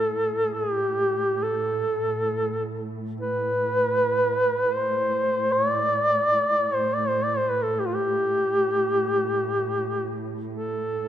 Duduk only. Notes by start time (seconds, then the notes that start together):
Already playing: A4
0.54 G#4
0.74 G4
1.43 A4
3.21 B4
4.72 C5
5.52 C#5
5.71 D5
6.74 C5
6.94 D5
7.08 C5
7.24 D5
7.38 C5
7.50 B4
7.62 A4
7.80 G4
7.86 F4
7.95 G4
10.53 A4